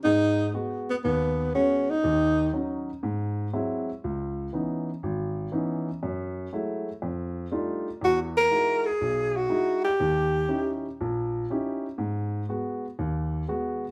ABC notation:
X:1
M:4/4
L:1/8
Q:"Swing" 1/4=120
K:G#m
V:1 name="Tenor saxophone"
D2 z B, B,2 C D- | D2 z6 | z8 | z8 |
F A2 G2 F2 =G- | =G3 z4 z | z8 |]
V:2 name="Grand piano"
[G,,G,]2 [G,B,F] z D,,2 [G,B,F] z | [D,,D,]2 [F,CD] z G,,2 [F,G,^B,E] z | C,,2 [E,B,CD] z G,,,2 [E,B,CD] z | F,,2 [F,G,=A,E] z =F,,2 [=G,A,=D_E=F] z |
E,,2 [G,DEF] z B,,,2 [G,DEF] z | D,,2 [CDE=G] z A,,,2 [CDEG] z | G,,2 [G,B,F] z D,,2 [G,B,F] z |]